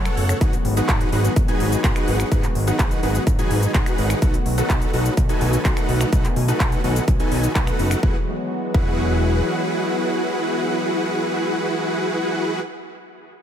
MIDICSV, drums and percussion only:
0, 0, Header, 1, 2, 480
1, 0, Start_track
1, 0, Key_signature, 4, "major"
1, 0, Tempo, 476190
1, 414, Time_signature, 4, 2, 24, 8
1, 13529, End_track
2, 0, Start_track
2, 0, Title_t, "Drums"
2, 55, Note_on_c, 9, 26, 73
2, 55, Note_on_c, 9, 42, 36
2, 58, Note_on_c, 9, 82, 33
2, 156, Note_off_c, 9, 26, 0
2, 156, Note_off_c, 9, 42, 0
2, 158, Note_off_c, 9, 82, 0
2, 175, Note_on_c, 9, 46, 99
2, 276, Note_off_c, 9, 46, 0
2, 295, Note_on_c, 9, 26, 84
2, 295, Note_on_c, 9, 42, 39
2, 298, Note_on_c, 9, 82, 67
2, 396, Note_off_c, 9, 26, 0
2, 396, Note_off_c, 9, 42, 0
2, 399, Note_off_c, 9, 82, 0
2, 414, Note_on_c, 9, 36, 127
2, 415, Note_on_c, 9, 42, 62
2, 418, Note_on_c, 9, 82, 55
2, 515, Note_off_c, 9, 36, 0
2, 516, Note_off_c, 9, 42, 0
2, 519, Note_off_c, 9, 82, 0
2, 535, Note_on_c, 9, 42, 40
2, 538, Note_on_c, 9, 82, 35
2, 636, Note_off_c, 9, 42, 0
2, 638, Note_off_c, 9, 82, 0
2, 654, Note_on_c, 9, 46, 103
2, 755, Note_off_c, 9, 46, 0
2, 774, Note_on_c, 9, 42, 39
2, 777, Note_on_c, 9, 82, 71
2, 875, Note_off_c, 9, 42, 0
2, 878, Note_off_c, 9, 82, 0
2, 894, Note_on_c, 9, 39, 122
2, 894, Note_on_c, 9, 42, 65
2, 895, Note_on_c, 9, 36, 118
2, 897, Note_on_c, 9, 82, 56
2, 994, Note_off_c, 9, 39, 0
2, 995, Note_off_c, 9, 36, 0
2, 995, Note_off_c, 9, 42, 0
2, 997, Note_off_c, 9, 82, 0
2, 1014, Note_on_c, 9, 42, 40
2, 1017, Note_on_c, 9, 82, 35
2, 1115, Note_off_c, 9, 42, 0
2, 1118, Note_off_c, 9, 82, 0
2, 1133, Note_on_c, 9, 46, 96
2, 1234, Note_off_c, 9, 46, 0
2, 1254, Note_on_c, 9, 42, 39
2, 1257, Note_on_c, 9, 82, 67
2, 1355, Note_off_c, 9, 42, 0
2, 1358, Note_off_c, 9, 82, 0
2, 1375, Note_on_c, 9, 36, 123
2, 1375, Note_on_c, 9, 42, 68
2, 1377, Note_on_c, 9, 82, 57
2, 1475, Note_off_c, 9, 36, 0
2, 1475, Note_off_c, 9, 42, 0
2, 1478, Note_off_c, 9, 82, 0
2, 1495, Note_on_c, 9, 42, 40
2, 1497, Note_on_c, 9, 82, 34
2, 1595, Note_off_c, 9, 42, 0
2, 1598, Note_off_c, 9, 82, 0
2, 1614, Note_on_c, 9, 46, 110
2, 1715, Note_off_c, 9, 46, 0
2, 1735, Note_on_c, 9, 42, 42
2, 1737, Note_on_c, 9, 82, 74
2, 1835, Note_off_c, 9, 42, 0
2, 1838, Note_off_c, 9, 82, 0
2, 1854, Note_on_c, 9, 36, 123
2, 1854, Note_on_c, 9, 39, 110
2, 1855, Note_on_c, 9, 26, 78
2, 1855, Note_on_c, 9, 42, 64
2, 1857, Note_on_c, 9, 82, 56
2, 1955, Note_off_c, 9, 26, 0
2, 1955, Note_off_c, 9, 36, 0
2, 1955, Note_off_c, 9, 39, 0
2, 1955, Note_off_c, 9, 42, 0
2, 1958, Note_off_c, 9, 82, 0
2, 1975, Note_on_c, 9, 26, 72
2, 1975, Note_on_c, 9, 42, 37
2, 1977, Note_on_c, 9, 82, 33
2, 2075, Note_off_c, 9, 26, 0
2, 2075, Note_off_c, 9, 42, 0
2, 2078, Note_off_c, 9, 82, 0
2, 2095, Note_on_c, 9, 46, 95
2, 2195, Note_off_c, 9, 46, 0
2, 2215, Note_on_c, 9, 26, 87
2, 2215, Note_on_c, 9, 42, 39
2, 2218, Note_on_c, 9, 82, 74
2, 2316, Note_off_c, 9, 26, 0
2, 2316, Note_off_c, 9, 42, 0
2, 2319, Note_off_c, 9, 82, 0
2, 2334, Note_on_c, 9, 36, 119
2, 2335, Note_on_c, 9, 42, 65
2, 2337, Note_on_c, 9, 82, 57
2, 2435, Note_off_c, 9, 36, 0
2, 2435, Note_off_c, 9, 42, 0
2, 2438, Note_off_c, 9, 82, 0
2, 2454, Note_on_c, 9, 39, 35
2, 2454, Note_on_c, 9, 42, 40
2, 2457, Note_on_c, 9, 82, 37
2, 2554, Note_off_c, 9, 39, 0
2, 2555, Note_off_c, 9, 42, 0
2, 2558, Note_off_c, 9, 82, 0
2, 2574, Note_on_c, 9, 46, 101
2, 2674, Note_off_c, 9, 46, 0
2, 2694, Note_on_c, 9, 42, 40
2, 2697, Note_on_c, 9, 82, 69
2, 2795, Note_off_c, 9, 42, 0
2, 2798, Note_off_c, 9, 82, 0
2, 2813, Note_on_c, 9, 39, 113
2, 2814, Note_on_c, 9, 36, 118
2, 2814, Note_on_c, 9, 42, 64
2, 2817, Note_on_c, 9, 82, 59
2, 2914, Note_off_c, 9, 39, 0
2, 2914, Note_off_c, 9, 42, 0
2, 2915, Note_off_c, 9, 36, 0
2, 2917, Note_off_c, 9, 82, 0
2, 2934, Note_on_c, 9, 42, 39
2, 2937, Note_on_c, 9, 82, 36
2, 3034, Note_off_c, 9, 42, 0
2, 3037, Note_off_c, 9, 82, 0
2, 3053, Note_on_c, 9, 46, 88
2, 3154, Note_off_c, 9, 46, 0
2, 3174, Note_on_c, 9, 42, 40
2, 3177, Note_on_c, 9, 82, 69
2, 3275, Note_off_c, 9, 42, 0
2, 3278, Note_off_c, 9, 82, 0
2, 3294, Note_on_c, 9, 36, 118
2, 3294, Note_on_c, 9, 42, 69
2, 3297, Note_on_c, 9, 82, 60
2, 3395, Note_off_c, 9, 36, 0
2, 3395, Note_off_c, 9, 42, 0
2, 3398, Note_off_c, 9, 82, 0
2, 3414, Note_on_c, 9, 42, 42
2, 3417, Note_on_c, 9, 82, 37
2, 3515, Note_off_c, 9, 42, 0
2, 3518, Note_off_c, 9, 82, 0
2, 3535, Note_on_c, 9, 46, 110
2, 3635, Note_off_c, 9, 46, 0
2, 3655, Note_on_c, 9, 42, 44
2, 3658, Note_on_c, 9, 82, 73
2, 3756, Note_off_c, 9, 42, 0
2, 3759, Note_off_c, 9, 82, 0
2, 3774, Note_on_c, 9, 26, 80
2, 3774, Note_on_c, 9, 36, 115
2, 3774, Note_on_c, 9, 39, 108
2, 3774, Note_on_c, 9, 42, 66
2, 3777, Note_on_c, 9, 82, 54
2, 3875, Note_off_c, 9, 26, 0
2, 3875, Note_off_c, 9, 36, 0
2, 3875, Note_off_c, 9, 39, 0
2, 3875, Note_off_c, 9, 42, 0
2, 3878, Note_off_c, 9, 82, 0
2, 3894, Note_on_c, 9, 26, 70
2, 3894, Note_on_c, 9, 42, 41
2, 3897, Note_on_c, 9, 82, 36
2, 3995, Note_off_c, 9, 26, 0
2, 3995, Note_off_c, 9, 42, 0
2, 3998, Note_off_c, 9, 82, 0
2, 4014, Note_on_c, 9, 46, 94
2, 4115, Note_off_c, 9, 46, 0
2, 4134, Note_on_c, 9, 26, 83
2, 4134, Note_on_c, 9, 42, 41
2, 4137, Note_on_c, 9, 82, 72
2, 4235, Note_off_c, 9, 26, 0
2, 4235, Note_off_c, 9, 42, 0
2, 4237, Note_off_c, 9, 82, 0
2, 4254, Note_on_c, 9, 36, 115
2, 4254, Note_on_c, 9, 42, 69
2, 4257, Note_on_c, 9, 82, 58
2, 4355, Note_off_c, 9, 36, 0
2, 4355, Note_off_c, 9, 42, 0
2, 4358, Note_off_c, 9, 82, 0
2, 4374, Note_on_c, 9, 42, 42
2, 4377, Note_on_c, 9, 82, 37
2, 4475, Note_off_c, 9, 42, 0
2, 4477, Note_off_c, 9, 82, 0
2, 4493, Note_on_c, 9, 46, 97
2, 4594, Note_off_c, 9, 46, 0
2, 4614, Note_on_c, 9, 42, 42
2, 4617, Note_on_c, 9, 82, 75
2, 4715, Note_off_c, 9, 42, 0
2, 4718, Note_off_c, 9, 82, 0
2, 4734, Note_on_c, 9, 36, 117
2, 4734, Note_on_c, 9, 39, 121
2, 4734, Note_on_c, 9, 42, 72
2, 4737, Note_on_c, 9, 82, 61
2, 4834, Note_off_c, 9, 39, 0
2, 4835, Note_off_c, 9, 36, 0
2, 4835, Note_off_c, 9, 42, 0
2, 4837, Note_off_c, 9, 82, 0
2, 4854, Note_on_c, 9, 42, 44
2, 4857, Note_on_c, 9, 82, 35
2, 4955, Note_off_c, 9, 42, 0
2, 4958, Note_off_c, 9, 82, 0
2, 4974, Note_on_c, 9, 46, 92
2, 5075, Note_off_c, 9, 46, 0
2, 5094, Note_on_c, 9, 42, 44
2, 5097, Note_on_c, 9, 82, 72
2, 5195, Note_off_c, 9, 42, 0
2, 5198, Note_off_c, 9, 82, 0
2, 5214, Note_on_c, 9, 36, 110
2, 5214, Note_on_c, 9, 42, 69
2, 5217, Note_on_c, 9, 82, 61
2, 5315, Note_off_c, 9, 36, 0
2, 5315, Note_off_c, 9, 42, 0
2, 5318, Note_off_c, 9, 82, 0
2, 5334, Note_on_c, 9, 42, 42
2, 5337, Note_on_c, 9, 82, 37
2, 5435, Note_off_c, 9, 42, 0
2, 5437, Note_off_c, 9, 82, 0
2, 5453, Note_on_c, 9, 46, 103
2, 5554, Note_off_c, 9, 46, 0
2, 5574, Note_on_c, 9, 42, 42
2, 5577, Note_on_c, 9, 82, 73
2, 5675, Note_off_c, 9, 42, 0
2, 5678, Note_off_c, 9, 82, 0
2, 5694, Note_on_c, 9, 26, 77
2, 5694, Note_on_c, 9, 39, 119
2, 5694, Note_on_c, 9, 42, 68
2, 5695, Note_on_c, 9, 36, 113
2, 5697, Note_on_c, 9, 82, 56
2, 5795, Note_off_c, 9, 26, 0
2, 5795, Note_off_c, 9, 36, 0
2, 5795, Note_off_c, 9, 39, 0
2, 5795, Note_off_c, 9, 42, 0
2, 5798, Note_off_c, 9, 82, 0
2, 5815, Note_on_c, 9, 26, 61
2, 5815, Note_on_c, 9, 42, 40
2, 5818, Note_on_c, 9, 82, 36
2, 5915, Note_off_c, 9, 26, 0
2, 5915, Note_off_c, 9, 42, 0
2, 5918, Note_off_c, 9, 82, 0
2, 5935, Note_on_c, 9, 46, 87
2, 6035, Note_off_c, 9, 46, 0
2, 6054, Note_on_c, 9, 26, 84
2, 6054, Note_on_c, 9, 42, 44
2, 6057, Note_on_c, 9, 82, 73
2, 6155, Note_off_c, 9, 26, 0
2, 6155, Note_off_c, 9, 42, 0
2, 6158, Note_off_c, 9, 82, 0
2, 6175, Note_on_c, 9, 36, 123
2, 6175, Note_on_c, 9, 42, 72
2, 6177, Note_on_c, 9, 82, 58
2, 6275, Note_off_c, 9, 36, 0
2, 6275, Note_off_c, 9, 42, 0
2, 6278, Note_off_c, 9, 82, 0
2, 6295, Note_on_c, 9, 39, 39
2, 6295, Note_on_c, 9, 42, 41
2, 6298, Note_on_c, 9, 82, 35
2, 6396, Note_off_c, 9, 39, 0
2, 6396, Note_off_c, 9, 42, 0
2, 6399, Note_off_c, 9, 82, 0
2, 6414, Note_on_c, 9, 46, 111
2, 6515, Note_off_c, 9, 46, 0
2, 6535, Note_on_c, 9, 42, 43
2, 6537, Note_on_c, 9, 82, 71
2, 6635, Note_off_c, 9, 42, 0
2, 6638, Note_off_c, 9, 82, 0
2, 6655, Note_on_c, 9, 36, 120
2, 6655, Note_on_c, 9, 39, 124
2, 6655, Note_on_c, 9, 42, 67
2, 6658, Note_on_c, 9, 82, 57
2, 6755, Note_off_c, 9, 36, 0
2, 6756, Note_off_c, 9, 39, 0
2, 6756, Note_off_c, 9, 42, 0
2, 6759, Note_off_c, 9, 82, 0
2, 6775, Note_on_c, 9, 42, 43
2, 6778, Note_on_c, 9, 82, 35
2, 6876, Note_off_c, 9, 42, 0
2, 6878, Note_off_c, 9, 82, 0
2, 6895, Note_on_c, 9, 46, 91
2, 6996, Note_off_c, 9, 46, 0
2, 7015, Note_on_c, 9, 42, 42
2, 7018, Note_on_c, 9, 82, 73
2, 7116, Note_off_c, 9, 42, 0
2, 7119, Note_off_c, 9, 82, 0
2, 7135, Note_on_c, 9, 36, 125
2, 7135, Note_on_c, 9, 42, 76
2, 7137, Note_on_c, 9, 82, 60
2, 7235, Note_off_c, 9, 36, 0
2, 7235, Note_off_c, 9, 42, 0
2, 7238, Note_off_c, 9, 82, 0
2, 7254, Note_on_c, 9, 42, 45
2, 7257, Note_on_c, 9, 82, 36
2, 7355, Note_off_c, 9, 42, 0
2, 7358, Note_off_c, 9, 82, 0
2, 7374, Note_on_c, 9, 46, 109
2, 7475, Note_off_c, 9, 46, 0
2, 7494, Note_on_c, 9, 42, 45
2, 7497, Note_on_c, 9, 82, 73
2, 7595, Note_off_c, 9, 42, 0
2, 7598, Note_off_c, 9, 82, 0
2, 7614, Note_on_c, 9, 36, 112
2, 7614, Note_on_c, 9, 39, 123
2, 7615, Note_on_c, 9, 26, 73
2, 7615, Note_on_c, 9, 42, 67
2, 7617, Note_on_c, 9, 82, 56
2, 7715, Note_off_c, 9, 26, 0
2, 7715, Note_off_c, 9, 36, 0
2, 7715, Note_off_c, 9, 39, 0
2, 7715, Note_off_c, 9, 42, 0
2, 7718, Note_off_c, 9, 82, 0
2, 7734, Note_on_c, 9, 26, 66
2, 7734, Note_on_c, 9, 42, 40
2, 7737, Note_on_c, 9, 82, 35
2, 7835, Note_off_c, 9, 26, 0
2, 7835, Note_off_c, 9, 42, 0
2, 7838, Note_off_c, 9, 82, 0
2, 7854, Note_on_c, 9, 46, 96
2, 7955, Note_off_c, 9, 46, 0
2, 7974, Note_on_c, 9, 26, 78
2, 7974, Note_on_c, 9, 42, 44
2, 7977, Note_on_c, 9, 82, 74
2, 8075, Note_off_c, 9, 26, 0
2, 8075, Note_off_c, 9, 42, 0
2, 8078, Note_off_c, 9, 82, 0
2, 8094, Note_on_c, 9, 36, 113
2, 8195, Note_off_c, 9, 36, 0
2, 8814, Note_on_c, 9, 36, 114
2, 8915, Note_off_c, 9, 36, 0
2, 13529, End_track
0, 0, End_of_file